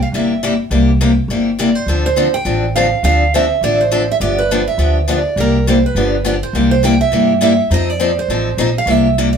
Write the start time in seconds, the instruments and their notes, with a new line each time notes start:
0.02 steel-string acoustic guitar F5
0.12 upright bass G1, steel-string acoustic guitar C3 G3 A#3 E4 G4 E5
0.43 steel-string acoustic guitar C3 G3 A#3 E4 G4
0.70 upright bass C2, steel-string acoustic guitar C3 G3 A#3 E4 G4
1.01 steel-string acoustic guitar C3 G3 A#3 E4 G4
1.28 upright bass G1, steel-string acoustic guitar C3 G3 A#3 E4 G4
1.59 steel-string acoustic guitar C3 G3 A#3 E4 G4 D5
1.75 steel-string acoustic guitar C5
1.86 upright bass D2, steel-string acoustic guitar D3 F3 C4 D4 A4
2.06 steel-string acoustic guitar C5
2.16 steel-string acoustic guitar D3 F3 C4 D4 A4
2.34 steel-string acoustic guitar G5
2.45 upright bass A1, steel-string acoustic guitar D3 F3 C4 D4 A4
2.76 steel-string acoustic guitar D3 F3 C4 D4 A4 F5
3.03 upright bass D2, steel-string acoustic guitar D3 F3 C4 D4 A4 F5
3.34 steel-string acoustic guitar D3 F3 C4 D4 A4 E5
3.61 upright bass A1, steel-string acoustic guitar D3 F3 C4 D4 A4 D5
3.81 steel-string acoustic guitar C5
3.92 steel-string acoustic guitar D3 F3 C4 D4 A4
4.12 steel-string acoustic guitar E5
4.20 upright bass G1, steel-string acoustic guitar D3 F3 B3 D4 G4 D5
4.39 steel-string acoustic guitar B4
4.51 steel-string acoustic guitar D3 F3 B3 D4 G4
4.68 steel-string acoustic guitar E5
4.78 upright bass D2, steel-string acoustic guitar D3 F3 B3 D4 G4
5.08 steel-string acoustic guitar D3 F3 B3 D4 G4 D5
5.36 upright bass C2, steel-string acoustic guitar C3 G3 A#3 E4 G4
5.40 steel-string acoustic guitar A#4
5.67 steel-string acoustic guitar C3 G3 A#3 E4 G4 C5
5.86 steel-string acoustic guitar B4
5.95 upright bass G1, steel-string acoustic guitar D3 F3 B3 D4 G4
6.25 steel-string acoustic guitar D3 F3 B3 D4 G4 D5
6.43 steel-string acoustic guitar C5
6.53 upright bass C2, steel-string acoustic guitar C3 G3 A#3 E4 G4
6.71 steel-string acoustic guitar C5
6.83 steel-string acoustic guitar C3 G3 A#3 E4 G4 G5
7.01 steel-string acoustic guitar E5
7.11 upright bass G2, steel-string acoustic guitar C3 G3 A#3 E4 G4
7.41 steel-string acoustic guitar C3 G3 A#3 E4 G4 E5
7.70 upright bass F2, steel-string acoustic guitar F3 C4 D#4 A4 D#5
7.90 steel-string acoustic guitar D5
8.00 steel-string acoustic guitar F3 C4 D#4 A4
8.19 steel-string acoustic guitar C5
8.28 upright bass A1, steel-string acoustic guitar F3 C4 D#4 A4
8.57 upright bass A#1, steel-string acoustic guitar F3 C4 D#4 A4 D#5
8.78 steel-string acoustic guitar F5
8.86 upright bass C2, steel-string acoustic guitar C3 G3 A#3 E4 G4
8.90 steel-string acoustic guitar E5
9.18 steel-string acoustic guitar C3 G3 A#3 E4 G4
9.33 steel-string acoustic guitar D5